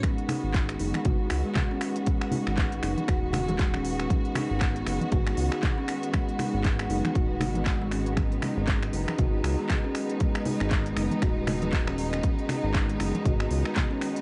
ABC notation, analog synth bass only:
X:1
M:4/4
L:1/16
Q:"Swing 16ths" 1/4=118
K:G#m
V:1 name="Analog synth bass" clef=bass
z3 G,,,3 F,,, z G,,,2 C,, z4 z | z3 G,,,3 F,,, z D,,,8 | z3 G,,,3 F,,, z G,,,2 C,, z4 z | z3 G,,,3 F,,, z D,,,2 G,,,6- |
G,,,2 z G,,,3 F,,, z G,,,2 C,, z4 z | z3 G,,,3 F,,, z D,,,8 | z3 G,,,3 F,,, z G,,,2 C,, z4 z |]